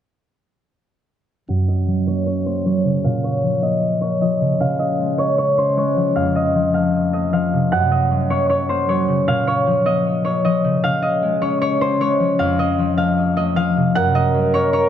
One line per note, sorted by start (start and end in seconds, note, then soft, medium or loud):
1.49 3.09 F#2 medium
1.49 3.10 F#5 loud
1.68 3.47 D#5 medium
1.87 2.64 F#3 medium
2.07 2.46 A#3 medium
2.07 2.26 C#5 medium
2.26 2.52 C#5 medium
2.46 3.63 A#3 medium
2.46 2.72 C5 medium
2.66 2.90 F#3 medium
2.66 3.23 C#5 medium
2.85 3.09 C#3 medium
3.04 4.46 A#2 loud
3.04 4.60 F5 loud
3.24 4.01 C#5 medium
3.43 4.21 F3 medium
3.62 4.02 A#3 medium
3.62 4.21 D#5 medium
4.01 6.80 A#3 medium
4.01 5.18 C#5 medium
4.21 4.46 F3 medium
4.21 4.79 D#5 medium
4.41 4.59 C#3 medium
4.60 6.21 C#3 medium
4.60 6.15 F5 loud
4.79 6.35 D#5 medium
4.99 5.76 G#3 medium
5.18 5.57 C#4 medium
5.18 5.38 C#5 medium
5.38 5.64 C#5 medium
5.58 7.59 C#4 medium
5.58 5.83 C5 medium
5.77 6.21 G#3 medium
5.77 7.69 C#5 medium
5.96 6.21 F3 medium
6.16 7.77 F2 medium
6.16 6.74 F5 loud
6.36 7.13 D#5 medium
6.55 7.32 F3 medium
6.74 7.13 A3 medium
6.74 7.33 F5 medium
7.13 8.36 A3 medium
7.13 7.91 D#5 medium
7.33 7.57 F3 medium
7.33 7.78 F5 medium
7.53 7.77 C3 medium
7.72 9.33 F#2 medium
7.72 9.34 F#5 loud
7.92 9.70 D#5 medium
8.11 8.88 F#3 medium
8.30 8.69 A#3 medium
8.30 8.49 C#5 medium
8.50 8.75 C#5 medium
8.69 9.86 A#3 medium
8.69 8.95 C5 medium
8.89 9.13 F#3 medium
8.89 9.47 C#5 medium
9.08 9.33 C#3 medium
9.28 10.69 A#2 loud
9.28 10.83 F5 loud
9.47 10.24 C#5 medium
9.67 10.44 F3 medium
9.86 10.25 A#3 medium
9.86 10.44 D#5 medium
10.25 13.04 A#3 medium
10.25 11.41 C#5 medium
10.45 10.69 F3 medium
10.45 11.02 D#5 medium
10.64 10.83 C#3 medium
10.84 12.44 C#3 medium
10.84 12.39 F5 loud
11.02 12.59 D#5 medium
11.23 11.99 G#3 medium
11.42 11.81 C#4 medium
11.42 11.61 C#5 medium
11.62 11.87 C#5 medium
11.81 13.82 C#4 medium
11.81 12.07 C5 medium
12.00 12.44 G#3 medium
12.00 13.92 C#5 medium
12.20 12.44 F3 medium
12.39 14.00 F2 medium
12.39 12.97 F5 loud
12.59 13.36 D#5 medium
12.79 13.55 F3 medium
12.98 13.36 A3 medium
12.98 13.56 F5 medium
13.37 14.60 A3 medium
13.37 14.15 D#5 medium
13.56 13.81 F3 medium
13.56 14.01 F5 medium
13.76 14.00 C3 medium
13.95 14.89 F#2 medium
13.95 14.89 A#4 loud
13.95 14.89 F#5 loud
14.15 14.89 D#5 medium
14.34 14.89 F#3 medium
14.54 14.89 A#3 medium
14.54 14.73 C#5 medium
14.73 14.89 C#5 medium